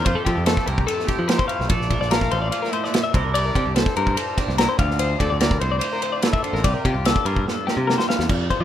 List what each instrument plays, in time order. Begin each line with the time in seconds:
Already playing: clean electric guitar F3 F4
0.05 clean electric guitar F2 F4 C5, picked electric bass F2, trumpet C5, kick, ride
0.15 clean electric guitar G4 A4
0.25 clean electric guitar F3 G4, picked electric bass F3, trumpet A4, kick, ride
0.37 picked electric bass F2
0.46 clean electric guitar A3 A4, trumpet A4, snare, ride
0.57 kick, snare
0.66 picked electric bass C2, clean electric guitar E4 A#4, trumpet G4, ride
0.78 kick
0.87 clean electric guitar C3 A4, trumpet A4, ride
1.00 snare
1.07 clean electric guitar G4, kick, snare, ride
1.19 picked electric bass F3
1.28 clean electric guitar A3 A#4, trumpet C5, snare, ride
1.38 clean electric guitar C5, kick
1.48 clean electric guitar E4 F5, ride
1.60 picked electric bass B1, snare
1.69 picked electric bass A#1, clean electric guitar A#2 A4 D5, trumpet D5, kick, ride
1.81 snare
1.89 picked electric bass A#1, clean electric guitar F3 A#4, kick, ride
2.01 picked electric bass A#1, clean electric guitar D5, snare
2.10 clean electric guitar A3 A#4, trumpet F5, snare, ride
2.21 kick, snare
2.31 picked electric bass A1, clean electric guitar C4 C5, ride
2.42 clean electric guitar D5
2.51 clean electric guitar F3, trumpet F5, ride
2.62 clean electric guitar A#4, snare
2.70 clean electric guitar A2 C5, trumpet E5, ride
2.84 clean electric guitar D5, snare
2.91 clean electric guitar A#2, snare, ride
3.04 clean electric guitar E5
3.12 picked electric bass C2, clean electric guitar C3 G3 D4 E4 A#4 C5, kick, ride
3.24 clean electric guitar A#4
3.33 clean electric guitar G3 D5, trumpet D5, ride
3.45 clean electric guitar A#4
3.54 picked electric bass C3, clean electric guitar D4 G4, kick, ride
3.66 picked electric bass C2
3.75 clean electric guitar E4 A4, trumpet C5, snare, ride
3.86 kick, snare
3.94 clean electric guitar G2 A#4, picked electric bass G2, ride
4.07 kick
4.15 clean electric guitar A4 A#4, ride
4.37 clean electric guitar D4 G4, kick, snare, ride
4.48 picked electric bass C2, snare
4.58 clean electric guitar E4 A#4, snare, ride
4.69 clean electric guitar C5
4.77 picked electric bass D2, clean electric guitar D3 F4 F5, kick, ride
4.91 snare
4.99 clean electric guitar F3 C5, ride
5.19 picked electric bass D2, clean electric guitar C4 A4, trumpet D5, kick, ride
5.30 picked electric bass D2, clean electric guitar D5
5.40 clean electric guitar E4 A#4, trumpet D5, snare, ride
5.51 kick
5.59 picked electric bass C2, clean electric guitar A2 C5, trumpet C5, ride
5.71 clean electric guitar D5
5.79 clean electric guitar F4, trumpet C5, ride
5.93 clean electric guitar A#4
6.02 clean electric guitar C4 C5, ride
6.12 clean electric guitar D5
6.22 clean electric guitar E4, trumpet A4, snare, ride
6.33 clean electric guitar E5, kick
6.43 clean electric guitar D3 F4 C5, ride
6.53 picked electric bass A1, clean electric guitar A#4, snare
6.64 picked electric bass C2, clean electric guitar C3 F4 D5, trumpet G4, kick, ride
6.74 clean electric guitar A#4
6.85 picked electric bass C3, trumpet F4, clean electric guitar G4, kick, ride
6.94 picked electric bass C2
7.04 clean electric guitar D4 A4, snare, ride
7.16 kick
7.25 picked electric bass G2, clean electric guitar F4 A#4, ride
7.36 kick
7.46 clean electric guitar G2 A4, snare
7.67 clean electric guitar G4 A#4, snare
7.77 picked electric bass C3
7.87 clean electric guitar D3 A#4, snare
7.98 clean electric guitar C5, snare
8.08 clean electric guitar E3 F5, snare
8.19 picked electric bass E2, snare
8.28 clean electric guitar F2 D5, picked electric bass F2, kick, crash
8.50 clean electric guitar F3 C5, kick, ride
8.60 picked electric bass F3, clean electric guitar D5